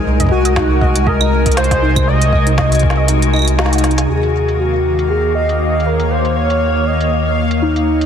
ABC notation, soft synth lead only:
X:1
M:4/4
L:1/8
Q:"Swing 16ths" 1/4=119
K:Ebdor
V:1 name="Soft synth lead"
z G3 B2 c2 | e3 z3 E2 | A2 G2 A e2 B | c d2 e2 z E2 |]